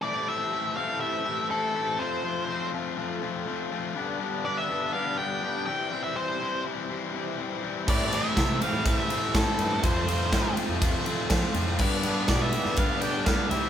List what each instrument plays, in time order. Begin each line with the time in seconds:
0.02 overdriven electric guitar A2 E3 A3 C4 E4, analog synth pad G4 C5 E5 A5, lead electric guitar D5
0.27 overdriven electric guitar A2 E3 A3 C4 E4, lead electric guitar E5
0.52 overdriven electric guitar A2 E3 A3 C4 E4
0.77 overdriven electric guitar A2 E3 A3 C4 E4, lead electric guitar F5
1.00 overdriven electric guitar A2 E3 A3 C4 E4, lead electric guitar E5
1.25 overdriven electric guitar A2 E3 A3 C4 E4
1.50 overdriven electric guitar A2 E3 A3 C4 E4, lead electric guitar A4
1.75 overdriven electric guitar A2 E3 A3 C4 E4
1.99 overdriven electric guitar F2 C3 F3 A3 C4 F4, analog synth pad A4 F5 C6, lead electric guitar C5
2.23 overdriven electric guitar F2 C3 F3 A3 C4 F4
2.48 overdriven electric guitar F2 C3 F3 A3 C4 F4
2.73 overdriven electric guitar F2 C3 F3 A3 C4 F4
2.97 overdriven electric guitar F2 C3 F3 A3 C4 F4
3.21 overdriven electric guitar F2 C3 F3 A3 C4 F4
3.46 overdriven electric guitar F2 C3 F3 A3 C4 F4
3.71 overdriven electric guitar F2 C3 F3 A3 C4 F4
3.94 overdriven electric guitar G2 D3 G3 B3 D4 G4, analog synth pad G4 B4 D5 B5
4.20 overdriven electric guitar G2 D3 G3 B3 D4 G4
4.45 overdriven electric guitar G2 D3 G3 B3 D4 G4, lead electric guitar D5
4.57 lead electric guitar E5
4.69 overdriven electric guitar G2 D3 G3 B3 D4 G4
4.93 overdriven electric guitar G2 D3 G3 B3 D4 G4, lead electric guitar F5
5.18 overdriven electric guitar G2 D3 G3 B3 D4 G4, lead electric guitar G5
5.42 overdriven electric guitar G2 D3 G3 B3 D4 G4
5.66 overdriven electric guitar C3 E3 G3 C4 E4, analog synth pad C5 E5 C6, lead electric guitar G5
5.91 overdriven electric guitar C3 E3 G3 C4 E4
6.04 lead electric guitar E5
6.16 overdriven electric guitar C3 E3 G3 C4 E4, lead electric guitar C5
6.41 overdriven electric guitar C3 E3 G3 C4 E4
6.65 overdriven electric guitar C3 E3 G3 C4 E4
6.89 overdriven electric guitar C3 E3 G3 C4 E4
7.14 overdriven electric guitar C3 E3 G3 C4 E4
7.38 overdriven electric guitar C3 E3 G3 C4 E4
7.63 overdriven electric guitar C3 E3 G3 C4 E4
7.87 overdriven electric guitar A2 E3 A3 C4 E4, picked electric bass A2, lead electric guitar D5, analog synth pad A5, kick, crash
8.12 overdriven electric guitar A2 E3 A3 C4 E4, picked electric bass A2, lead electric guitar E5, ride
8.35 overdriven electric guitar A2 E3 A3 C4 E4, picked electric bass C3, kick, snare, ride
8.60 overdriven electric guitar A2 E3 A3 C4 E4, lead electric guitar F5, ride
8.73 picked electric bass A2
8.84 overdriven electric guitar A2 E3 A3 C4 E4, lead electric guitar F5, kick, ride
8.98 lead electric guitar E5
9.09 overdriven electric guitar A2 E3 A3 C4 E4, ride
9.34 overdriven electric guitar A2 E3 A3 C4 E4, picked electric bass A2, lead electric guitar A4, kick, snare, ride
9.59 picked electric bass G2, overdriven electric guitar A2 E3 A3 C4 E4, ride
9.82 overdriven electric guitar F2 C3 F3 A3 C4 F4, picked electric bass F2, analog synth pad A4 C5 F5 C6, lead electric guitar C5, kick, ride
10.07 picked electric bass F2, overdriven electric guitar F2 C3 F3 A3 C4 F4, ride
10.32 overdriven electric guitar F2 C3 F3 A3 C4 F4, picked electric bass A2, kick, snare, ride
10.57 overdriven electric guitar F2 C3 F3 A3 C4 F4, ride
10.69 picked electric bass F2
10.81 overdriven electric guitar F2 C3 F3 A3 C4 F4, kick, ride
11.06 overdriven electric guitar F2 C3 F3 A3 C4 F4, ride
11.30 overdriven electric guitar F2 C3 F3 A3 C4 F4, picked electric bass F3, kick, snare, ride
11.54 picked electric bass F2, overdriven electric guitar F2 C3 F3 A3 C4 F4, ride
11.79 picked electric bass G2, overdriven electric guitar G2 D3 G3 B3 D4 G4, analog synth pad G4 B4 D5 B5, kick, crash
12.03 picked electric bass G2, overdriven electric guitar G2 D3 G3 B3 D4 G4, ride
12.28 overdriven electric guitar G2 D3 G3 B3 D4 G4, picked electric bass B2, lead electric guitar D5, kick, snare, ride
12.41 lead electric guitar E5
12.53 overdriven electric guitar G2 D3 G3 B3 D4 G4, ride
12.65 picked electric bass G2, snare
12.77 overdriven electric guitar G2 D3 G3 B3 D4 G4, lead electric guitar F5, kick, ride
13.01 overdriven electric guitar G2 D3 G3 B3 D4 G4, lead electric guitar G5, ride
13.26 overdriven electric guitar G2 D3 G3 B3 D4 G4, picked electric bass G2, lead electric guitar F5, kick, snare, ride
13.50 picked electric bass C2, overdriven electric guitar C3 E3 G3 C4 E4 G4, analog synth pad C5 E5 C6, lead electric guitar E5, ride